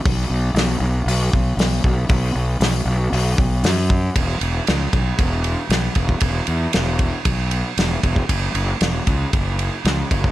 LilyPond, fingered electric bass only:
\new Staff \with { instrumentName = "Fingered electric bass" } { \clef bass \time 4/4 \key e \major \tempo 4 = 116 b,,8 b,,8 b,,8 b,,8 b,,8 b,,8 b,,8 b,,8 | b,,8 b,,8 b,,8 b,,8 b,,8 b,,8 fis,4 | e,,8 e,,8 cis,8 b,,8 e,,4 b,,8 e,,8 | e,,8 e,8 e,,4 b,,4 e,,8 e,,8 |
fis,,8 fis,,8 e,,8 cis,8 fis,,4 cis,8 fis,,8 | }